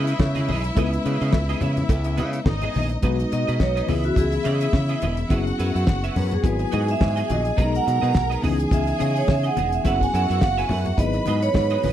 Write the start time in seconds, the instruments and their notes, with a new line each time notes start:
Already playing: fingered electric bass C#3, tine electric piano G#3 B3 C#4 E4 B4, violin section E4 E5
0.07 clean electric guitar B3 E4 G#4 D#5, closed hi-hat
0.19 fingered electric bass C#3, kick, snare, cowbell, high conga
0.35 clean electric guitar B3 E4 G#4 D#5, closed hi-hat, high conga
0.47 fingered electric bass B1, clean electric guitar B3 E4 G#4 D#5, open hi-hat, high conga
0.64 muted clean electric guitar stroke, closed hi-hat
0.75 fingered electric bass C#2, tine electric piano G#3 B3 C#4 E4 B4, clean electric guitar B3 E4 G#4 D#5, kick, closed hi-hat, cowbell, muted conga
0.93 muted clean electric guitar stroke, closed hi-hat
1.05 fingered electric bass C#3, clean electric guitar B3 E4 G#4 D#5, closed hi-hat
1.21 fingered electric bass C#3, clean electric guitar B3 E4 G#4 D#5, closed hi-hat
1.33 fingered electric bass C#2, muted clean electric guitar stroke, kick, snare, cowbell, high conga
1.49 clean electric guitar B3 E4 G#4 D#5, closed hi-hat
1.61 fingered electric bass C#3, clean electric guitar B3 E4 G#4 E5, closed hi-hat, low conga
1.77 muted clean electric guitar stroke, closed hi-hat, low conga
1.89 fingered electric bass C#2, muted clean electric guitar stroke, kick, closed hi-hat, cowbell, muted conga
2.04 muted clean electric guitar stroke, closed hi-hat
2.17 fingered electric bass C#3, clean electric guitar B3 E4 G#4 D#5, closed hi-hat, muted conga
2.33 muted clean electric guitar stroke, closed hi-hat
2.46 fingered electric bass G#1, violin section D#4 D#5, muted clean electric guitar stroke, kick, snare, cowbell, high conga
2.61 clean electric guitar B3 E4 G#4 D#5, closed hi-hat, high conga
2.74 fingered electric bass A#1, clean electric guitar B3 E4 G#4 D#5, open hi-hat, high conga
2.89 muted clean electric guitar stroke, closed hi-hat
3.02 fingered electric bass B1, tine electric piano G#3 B3 D#4 F#4 B4, clean electric guitar D#4 G#4 B4 D#5, violin section D#4 D#5, kick, closed hi-hat, muted conga
3.18 muted clean electric guitar stroke, closed hi-hat
3.31 fingered electric bass B2, vibraphone D#5, muted clean electric guitar stroke, snare, closed hi-hat
3.47 fingered electric bass B2, clean electric guitar D#4 G#4 B4 D#5, vibraphone B4, closed hi-hat
3.60 fingered electric bass B1, vibraphone C#5, muted clean electric guitar stroke, kick, snare, high conga
3.76 clean electric guitar D#4 G#4 B4 D#5, vibraphone B4, closed hi-hat
3.87 fingered electric bass C#2, tine electric piano E3 B3 C#4 E4 G#4, clean electric guitar B3 E4 G#4 D#5, violin section E4 E5, open hi-hat, low conga
4.04 vibraphone F#4, muted clean electric guitar stroke, closed hi-hat
4.16 fingered electric bass C#2, vibraphone G#4, muted clean electric guitar stroke, kick, closed hi-hat, muted conga, low conga
4.32 muted clean electric guitar stroke, closed hi-hat
4.44 fingered electric bass C#3, clean electric guitar B3 E4 G#4 D#5, closed hi-hat, muted conga
4.61 clean electric guitar B3 E4 G#4 D#5, closed hi-hat
4.73 fingered electric bass C#3, muted clean electric guitar stroke, kick, snare, high conga
4.89 clean electric guitar B3 E4 G#4 D#5, closed hi-hat
5.02 fingered electric bass E1, clean electric guitar B3 E4 G#4 D#5, closed hi-hat, high conga
5.17 muted clean electric guitar stroke, closed hi-hat
5.29 fingered electric bass F#1, tine electric piano F#3 B3 C#4 E4 G#4, clean electric guitar E4 G#4 B4 E5, violin section F#4 F#5, kick, closed hi-hat, muted conga
5.46 muted clean electric guitar stroke, closed hi-hat
5.58 fingered electric bass F#2, clean electric guitar E4 G#4 B4 E5, snare, closed hi-hat
5.74 fingered electric bass F#2, clean electric guitar E4 G#4 B4 E5, closed hi-hat
5.87 fingered electric bass F#1, muted clean electric guitar stroke, kick, snare, high conga
6.04 clean electric guitar E4 G#4 B4 E5, closed hi-hat
6.16 fingered electric bass F#2, clean electric guitar E4 G#4 B4 F#5, vibraphone B4, open hi-hat, low conga
6.31 vibraphone G#4, muted clean electric guitar stroke, closed hi-hat, low conga
6.43 fingered electric bass G#1, tine electric piano F#3 B3 E4 F#4 G#4, violin section G#4 G#5, vibraphone B4, muted clean electric guitar stroke, kick, closed hi-hat, muted conga
6.59 muted clean electric guitar stroke, closed hi-hat
6.72 fingered electric bass G#2, clean electric guitar B3 F#4 G#4 D#5, closed hi-hat, muted conga
6.88 vibraphone E5, muted clean electric guitar stroke, closed hi-hat
7.01 fingered electric bass G#2, muted clean electric guitar stroke, kick, snare, high conga
7.16 clean electric guitar B3 F#4 G#4 D#5, closed hi-hat
7.29 fingered electric bass A#1, clean electric guitar B3 F#4 G#4 D#5, vibraphone D#5, closed hi-hat, high conga
7.45 muted clean electric guitar stroke, closed hi-hat
7.57 fingered electric bass B1, tine electric piano F#3 G#3 B3 C#4 G#4, clean electric guitar D#4 G#4 B4 D#5, violin section A#4 A#5, kick, closed hi-hat, muted conga
7.65 tine electric piano D#4
7.73 vibraphone F#5, muted clean electric guitar stroke, closed hi-hat
7.85 fingered electric bass B2, muted clean electric guitar stroke, snare, closed hi-hat
8.01 fingered electric bass B2, clean electric guitar D#4 G#4 B4 D#5, closed hi-hat
8.14 fingered electric bass B1, muted clean electric guitar stroke, kick, snare, high conga
8.30 clean electric guitar D#4 G#4 B4 D#5, closed hi-hat
8.42 fingered electric bass C#2, tine electric piano D#3 B3 C#4 D#4 G#4, clean electric guitar B3 E4 G#4 D#5, violin section G#4 G#5, open hi-hat, low conga
8.48 tine electric piano E3
8.59 muted clean electric guitar stroke, closed hi-hat
8.71 fingered electric bass C#2, vibraphone E5, muted clean electric guitar stroke, kick, closed hi-hat, muted conga, low conga
8.87 vibraphone E5, muted clean electric guitar stroke, closed hi-hat
8.99 fingered electric bass C#3, clean electric guitar B3 E4 G#4 D#5, closed hi-hat, muted conga
9.14 clean electric guitar B3 E4 G#4 D#5, vibraphone C#5, closed hi-hat
9.28 fingered electric bass C#3, vibraphone E5, muted clean electric guitar stroke, kick, snare, high conga
9.43 clean electric guitar B3 E4 G#4 D#5, vibraphone F#5, closed hi-hat
9.56 fingered electric bass E1, clean electric guitar B3 E4 G#4 D#5, closed hi-hat, high conga
9.72 vibraphone E5, muted clean electric guitar stroke, closed hi-hat
9.84 fingered electric bass F#1, tine electric piano F#3 B3 C#4 E4 G#4, clean electric guitar E4 G#4 B4 E5, violin section F#4 F#5, vibraphone F#5, kick, closed hi-hat, muted conga
10.01 vibraphone G#5, muted clean electric guitar stroke, kick, closed hi-hat
10.13 fingered electric bass F#2, clean electric guitar E4 G#4 B4 E5, vibraphone F#5, snare, closed hi-hat
10.29 fingered electric bass F#2, clean electric guitar E4 G#4 B4 E5, closed hi-hat
10.39 fingered electric bass F#1, vibraphone F5 F#5, muted clean electric guitar stroke, kick, snare, high conga
10.57 clean electric guitar E4 G#4 B4 E5, vibraphone G#5, closed hi-hat
10.69 fingered electric bass F#2, clean electric guitar E4 G#4 B4 F#5, vibraphone E5, open hi-hat, low conga
10.86 muted clean electric guitar stroke, closed hi-hat, low conga
10.97 fingered electric bass G#1, tine electric piano F#3 B3 D#4 E4 G#4, violin section B4 B5, vibraphone D#5, muted clean electric guitar stroke, kick, closed hi-hat, muted conga
11.13 muted clean electric guitar stroke, closed hi-hat
11.26 fingered electric bass G#2, clean electric guitar B3 F#4 G#4 D#5, closed hi-hat, muted conga
11.42 vibraphone C#5, muted clean electric guitar stroke, closed hi-hat
11.54 fingered electric bass G#2, muted clean electric guitar stroke, kick, snare, high conga
11.70 clean electric guitar B3 F#4 G#4 D#5, closed hi-hat
11.83 fingered electric bass A#1, clean electric guitar B3 F#4 G#4 D#5, vibraphone B4, open hi-hat, high conga